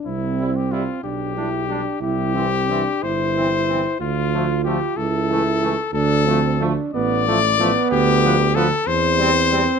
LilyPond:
<<
  \new Staff \with { instrumentName = "Trumpet" } { \time 6/8 \key c \major \tempo 4. = 62 e'8. g'16 f'8 g'4. | g'4. c''4. | f'4 g'8 a'4. | a'4 r8 d''4. |
g'4 a'8 c''4. | }
  \new Staff \with { instrumentName = "Trombone" } { \time 6/8 \key c \major c'4. d'8 e'8 d'8 | e'8 c'8 d'8 e'4. | f'4. e'4. | d'8 c'8 d'8 b8 a8 b8~ |
b4 r8 c'4. | }
  \new Staff \with { instrumentName = "Trumpet" } { \time 6/8 \key c \major r8 e'8 e'8 r8 d'8 d'8 | r8 c'8 c'8 r8 c'8 c'8 | r8 a8 a8 r8 a8 a8 | r8 a8 a8 r8 a8 a8 |
r8 b8 b8 r8 c'8 c'8 | }
  \new Staff \with { instrumentName = "French horn" } { \clef bass \time 6/8 \key c \major r8 g8 g8 r8 g8 g8 | r8 e8 e8 r8 e8 e8 | r8 f8 f8 r8 e8 e8 | r8 f8 f8 r8 f8 f8 |
r8 f8 f8 r8 g8 g8 | }
  \new Staff \with { instrumentName = "Tuba" } { \clef bass \time 6/8 \key c \major c,4. b,,4. | c,4. g,,4. | d,4. cis,4. | d,4. a,,4. |
d,4. e,4. | }
>>